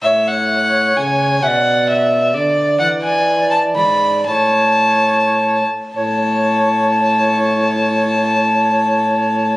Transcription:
0.04 0.92 A2 medium
0.04 1.39 C#5 medium
0.04 0.29 E5 medium
0.28 0.98 F#5 medium
0.97 1.41 C#3 medium
0.97 1.44 G#5 medium
1.42 2.36 B2 medium
1.42 1.49 E5 medium
1.42 1.88 F#5 medium
1.48 2.33 D5 medium
1.90 2.36 E5 medium
2.34 2.79 D3 medium
2.34 2.79 D5 medium
2.34 2.80 D5 medium
2.79 3.77 E3 medium
2.79 3.75 D5 medium
2.79 2.87 F#5 medium
3.03 3.50 G#5 medium
3.51 3.59 A5 medium
3.76 4.26 G#2 medium
3.76 4.27 D5 medium
3.76 4.26 B5 medium
4.27 5.63 A2 medium
4.27 5.64 C#5 medium
4.27 5.63 A5 medium
5.95 9.57 A2 medium
5.95 9.57 C#5 medium
5.95 9.57 A5 medium

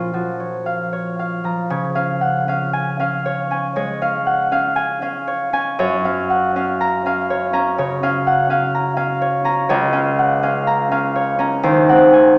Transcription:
0.00 1.75 A#2 soft
0.00 0.13 F3 soft
0.00 1.94 C#4 soft
0.00 3.78 F4 soft
0.00 0.39 C#5 soft
0.00 0.65 F5 soft
0.00 1.43 A#5 medium
0.14 1.43 F3 soft
0.14 0.58 F#4 soft
0.40 0.91 C#5 soft
0.66 1.18 F5 soft
0.93 1.69 C#5 soft
1.19 1.94 F5 soft
1.44 5.34 F3 soft
1.44 1.75 A#5 soft
1.70 5.60 C#3 medium
1.70 3.24 C#5 medium
1.95 2.47 C#4 soft
1.95 2.47 F5 medium
2.21 2.66 F#5 soft
2.48 2.99 C#4 soft
2.48 2.99 F5 medium
2.73 3.50 G#5 medium
2.99 3.50 C#4 soft
2.99 4.01 F5 medium
3.26 3.75 C#5 medium
3.51 4.00 C#4 soft
3.51 4.75 G#5 soft
3.76 5.83 G#3 soft
3.76 5.26 C#5 medium
4.01 4.51 C#4 soft
4.01 4.51 F5 medium
4.27 4.70 F#5 soft
4.51 5.01 C#4 soft
4.51 5.01 F5 medium
4.76 5.52 G#5 medium
5.02 5.52 C#4 medium
5.02 6.04 F5 medium
5.27 5.78 C#5 medium
5.53 6.04 C#4 medium
5.53 5.83 G#5 medium
5.79 9.69 F#2 medium
5.79 7.29 C#5 medium
6.05 6.55 C#4 soft
6.05 6.55 F5 medium
6.30 6.73 F#5 medium
6.56 7.05 C#4 medium
6.56 7.05 F5 medium
6.81 7.52 A#5 medium
7.06 7.52 C#4 medium
7.06 8.02 F5 medium
7.30 7.77 C#5 medium
7.53 8.02 C#4 medium
7.53 8.73 A#5 medium
7.78 9.74 C#3 medium
7.78 9.20 C#5 medium
8.03 8.49 C#4 medium
8.03 8.49 F5 medium
8.27 8.67 F#5 medium
8.50 8.95 C#4 medium
8.50 8.96 F5 medium
8.75 9.43 A#5 medium
8.96 9.43 C#4 medium
8.96 9.92 F5 medium
9.22 9.68 C#5 medium
9.44 9.92 C#4 medium
9.44 10.66 A#5 medium
9.69 11.68 C#2 medium
9.69 11.14 C#5 medium
9.93 10.42 C#4 medium
9.93 10.42 F5 medium
10.19 10.60 F#5 medium
10.43 10.90 C#4 medium
10.43 10.90 F5 medium
10.67 11.38 A#5 medium
10.91 11.38 C#4 medium
10.91 11.68 F5 medium
11.16 11.68 C#5 medium
11.39 11.68 C#4 medium
11.39 11.68 A#5 medium
11.63 12.38 D#2 medium
11.63 12.38 C5 medium
11.89 12.37 C4 medium
11.89 12.37 F#5 medium
12.13 12.38 G#5 soft

